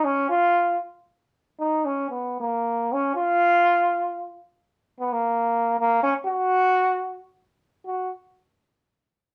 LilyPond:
\new Staff \with { instrumentName = "Trombone" } { \time 3/4 \key fis \major \tempo 4 = 115 cis'8 eis'4 r4. | dis'8 cis'8 b8 ais4 cis'8 | eis'2~ eis'8 r8 | r8 b16 ais4~ ais16 ais8 cis'8 |
fis'2 r4 | fis'8 r2 r8 | }